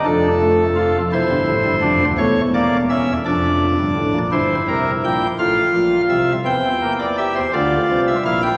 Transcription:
<<
  \new Staff \with { instrumentName = "Pipe organ" } { \time 6/8 \key d \phrygian \tempo 4. = 56 << { a'4. c''4. | cis''8 d''8 e''8 d''4. | c''8 bes'8 g''8 f''4 e''8 | g''8. d''16 e''16 c''16 d''8. e''16 f''16 g''16 | } \\ { d'8 a8 f'8 e'4 d'8 | a8 bes8 cis'8 d'4. | e'4. f'4. | c'8 bes8 g'8 f'4 e'8 | } >> }
  \new Staff \with { instrumentName = "Pipe organ" } { \clef bass \time 6/8 \key d \phrygian <f,, f,>4. <e,, e,>16 <g,, g,>16 <a,, a,>16 <g,, g,>16 <f,, f,>16 <d,, d,>16 | <e,, e,>4. <f,, f,>8. <g,, g,>16 <a,, a,>16 <bes,, bes,>16 | <g,, g,>8 <c, c>8 <bes,, bes,>8 <a,, a,>8 <bes,, bes,>8 <c, c>8 | <e, e>4. <d, d>8 <c, c>8 <bes,, bes,>8 | }
>>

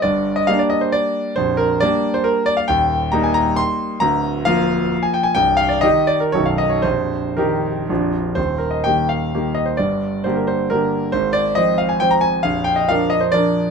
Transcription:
<<
  \new Staff \with { instrumentName = "Grand piano" } { \time 3/4 \key g \phrygian \tempo 4 = 133 d''8. ees''16 f''16 d''16 ees''16 c''16 d''4 | c''8 bes'8 d''8. c''16 bes'8 d''16 f''16 | \key ees \major g''4 bes''16 aes''16 bes''8 c'''4 | bes''4 f''4~ f''16 aes''16 g''16 aes''16 |
g''8 f''16 d''16 ees''8 d''16 bes'16 des''16 f''16 dis''16 des''16 | c''4 bes'4. r8 | c''8 bes'16 ees''16 g''8 f''4 ees''16 c''16 | d''4 c''16 bes'16 c''8 bes'4 |
c''8 d''8 ees''8 f''16 aes''16 g''16 bes''16 aes''8 | f''8 g''16 ees''16 f''8 ees''16 c''16 d''4 | }
  \new Staff \with { instrumentName = "Grand piano" } { \clef bass \time 3/4 \key g \phrygian <g,, g,>4 <g bes d'>2 | <bes,,, bes,,>4 <g bes d'>2 | \key ees \major <ees,, ees,>4 <g bes ees'>2 | <d,, d,>4 <f bes f'>2 |
<c,, c,>4 <ees ees' g'>4 <b,,, b,, dis dis' a'>4 | <bes,,, bes,,>4 <ees ees' g'>4 <bes,,, bes,, f d' f'>4 | <ees,, ees,>4 <ees bes g'>4 <ees bes g'>4 | <g,, g,>4 <d bes g'>4 <d bes g'>4 |
<aes,, aes,>4 <f c' c''>4 <f c' c''>4 | <bes,,, bes,,>4 <f d' bes'>4 <f d' bes'>4 | }
>>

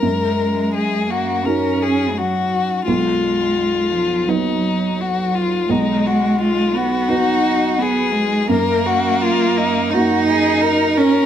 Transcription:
<<
  \new Staff \with { instrumentName = "Violin" } { \time 4/4 \key fis \major \tempo 4 = 85 ais'4 gis'8 fis'8 ais'8 gis'8 fis'4 | eis'2 dis'4 fis'8 eis'8 | dis'8 fis'8 eis'8 fis'4. gis'4 | ais'8 fis'8 eis'8 dis'8 fis'8 gis'8 ais'8 ais'8 | }
  \new Staff \with { instrumentName = "Felt piano" } { \time 4/4 \key fis \major fis,2 <cis' dis' fis'>2 | b,,2 <fis b dis'>2 | b,,2 <b dis' fis'>2 | fis,2 <ais dis' fis'>2 | }
  \new Staff \with { instrumentName = "Cello" } { \time 4/4 \key fis \major gis4. ais8 cis'4 fis4 | gis4. eis8 fis2 | gis4. b8 dis'4 b8 gis8 | ais2 dis'4. cis'8 | }
>>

